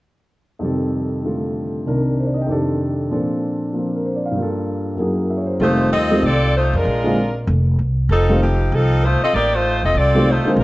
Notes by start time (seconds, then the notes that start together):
0.59 F2 C3 D#3 G3
0.65 A4
1.23 D3 A3 F4 A4
1.86 C2 C3 D#3 D4 A#4
2.19 C5
2.26 D5
2.34 D#5
2.42 G5
2.46 F2 C3 D#3 D4 G4
2.52 A4
3.11 A#2 F3 C4 D4 A4
3.73 F3 A#3 C4 F4
3.96 A#4
4.05 C5
4.16 D5
4.26 F5
4.31 G2 G3
4.37 A#3 F4
4.42 A4
4.96 F#2 F#3 A#3 E4
5.00 G#4
5.30 E5
5.37 C#5
5.46 C5
5.53 A#4
5.60 F1 D#3 G3 A3 C4 D#4 F4 C5
5.92 D#2 C4 F4 A4 D#5
6.11 D#3 G3 A3 C4 F4
6.23 C2 C4 F4 A4 D5
6.56 A3 D#4 F4 C5
6.73 F2 G#3 D4 F4 A#4
6.85 A#1
7.04 D3 G#3 A#3 C4 F4
7.47 F1
7.79 C2
8.09 F1 F3 C4 D#4 A4
8.29 D#3 G3 A3 C4 F4
8.42 F3 C4 D#4 G4
8.72 C2 F3 C4 D#4 A4
9.04 A3 D#4 F4 C5
9.22 C4 F4 A4 D#5, muted upright bass stroke
9.33 A1 A#3 D#4 G4 D5
9.54 A3 D#4 F4 C5
9.83 E1 C4 F4 A4 D#5
9.95 C2 C4 F4 A4 D5
10.14 D#3 G3 A3 C4 F4
10.30 A3 D#4 F4 C5
10.45 D3 G#3 A#3 C4 F4, muted upright bass stroke
10.56 A#1 G#3 D4 F4 A#4